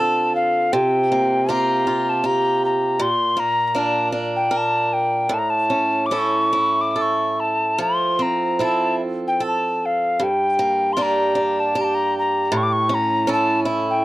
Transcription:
Already playing: D3 C4 F4 A4 A5
0.35 F5
0.73 C3 G5
1.12 A#3
1.49 A#3 F4 G4 A#5
1.87 F4
2.09 A5
2.24 G4 A#5
2.65 A#5
2.99 A#2 C6
3.37 A#3 A#5
3.68 A#5
3.75 A#3 D4 A#4
3.79 A5
4.12 D4
4.36 G5
4.51 A#4
4.57 A5
4.93 G5
5.29 A2
5.34 A5
5.39 A#5
5.50 A5
5.70 C#4
6.06 D6
6.11 C#4 E4 A4
6.19 C#6
6.53 E4
6.81 D6
6.91 D6
6.96 A4
7.02 C#6
7.40 A5
7.78 F3 C6
8.19 C4 A#5
8.59 C4 E4 A4
8.65 A5
9.28 G5
9.40 A4
9.48 A5
9.86 F5
10.20 G2 G5
10.59 A#3
10.93 A#3 C6
10.97 D4 G4
11.02 A#5
11.35 D4
11.60 A5
11.75 G4
11.81 A5 A#5
11.95 A#5
12.19 A#5
12.52 A2
12.57 C#6
12.63 D6
12.73 C#6
12.89 C#4
12.94 A#5
13.27 C#4 E4 A4
13.33 A5
13.65 E4
13.90 G5

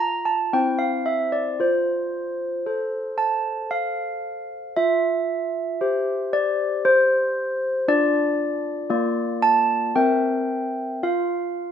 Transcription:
Already playing: F4 F5
0.00 A#5
0.25 A5
0.53 C4 E4 C5 G5
0.79 F5
1.06 E5
1.32 D5
1.60 F4 C5
2.66 A4 C5
3.18 A5
3.71 F5
4.76 F4 E5
5.81 G4 C5
6.33 D5
6.85 C5
7.88 D4 F4 D5
8.90 A#3 F4 D5
9.42 A5
9.96 C4 A#4 E5 G5
11.03 F4 F5

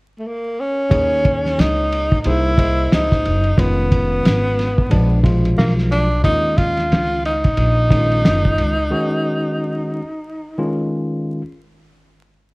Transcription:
0.19 A3
0.27 A#3
0.60 C#4
0.90 D#2 A#3 D#4 G#4 C#5, kick, ride
1.25 kick, ride
1.46 snare
1.58 C#2 D#4, snare, hi-hat pedal, ride
1.92 ride
2.12 kick
2.21 D#4, ride
2.25 C2 A#3 D#4 E4 G#4 C5
2.58 A#3 G#4 C5 D#5, kick, ride
2.92 C#2 D#4, snare, hi-hat pedal, ride
3.12 kick, snare
3.25 F#1, ride
3.44 ride
3.57 F1 D#3 G#3 B3 C#4 F4, kick, ride
3.92 kick, ride
4.25 G#1, snare, hi-hat pedal, ride
4.59 snare, ride
4.78 kick
4.90 A#1 F3 G#3 B3 D4, kick, ride
5.23 B2 F3 G#3 F4, kick, ride
5.45 ride
5.58 B1 A#3, snare, hi-hat pedal, ride
5.78 snare
5.92 D4, ride
6.23 D#2 D#3 G#3 C#4 D#4 F4, kick, ride
6.57 F4, kick, ride
6.77 snare, ride
6.91 C#2, snare, hi-hat pedal, ride
7.25 D#4, ride
7.44 kick, ride
7.57 A#1, ride
7.91 D#3 G#3 C#4 D#4, kick, ride
7.98 F4
8.12 ride
8.25 F#1, snare, hi-hat pedal, ride
8.45 kick
8.58 C#2, ride
8.90 D#3 G#3 C#4 F#4
10.58 D#3 G#3 C#4 F4

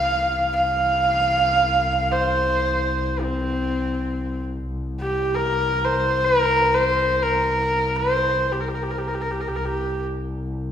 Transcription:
Already playing: C2 F5
0.55 F5
2.12 C5
3.23 C4
4.66 C2
5.00 G4
5.35 A#4
5.84 C5
6.24 A#4
6.74 C5
7.23 A#4
7.96 C5
8.52 G4
8.60 A#4
8.68 G4
8.75 A#4
8.83 G4
8.91 A#4
8.98 G4
9.08 A#4
9.15 G4
9.21 A#4
9.31 G4
9.41 A#4
9.48 G4
9.53 C2 A#4
9.65 G4

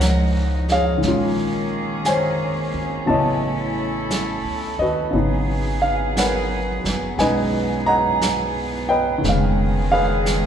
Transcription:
Already playing: C#2 D#3 F3 G#3 C#4 D#4 G#4 A#4 C#5 F5 F#5
0.01 brush sweep, snare, hi-hat pedal
0.69 G#4 C#5 F5, snare
0.98 D#3 G#3
1.02 A#1 D#3 A#3 C#4 G#4, brush sweep, snare
1.08 F4
2.05 C5 C#5 G#5, brush sweep, snare, hi-hat pedal
2.74 G#1
3.06 A1 C#3 F#3 A3 B3 E4 A4 C#5 D#5 A5, brush sweep
4.10 brush sweep, snare, hi-hat pedal
4.44 C#2
4.79 D#2 F#4 B4 D#5
5.11 G#1 C#3 F#3 B3, brush sweep
5.15 D#4 G#4
5.82 F5
6.17 A#4 B4 F#5, brush sweep, snare, hi-hat pedal
6.84 F#1, snare
7.18 B1 G#3 C#4 D#4 G#4 B4 D#5 G#5, brush sweep, snare
7.86 D#5 F#5 A#5
8.21 brush sweep, snare, hi-hat pedal
8.89 B4 D#5 G5
9.18 D#3 G#3
9.23 F1 C#3 D#3 G#3 G#4, brush sweep, snare
9.29 F5
9.92 G#4 B4 F5
10.26 brush sweep, snare, hi-hat pedal

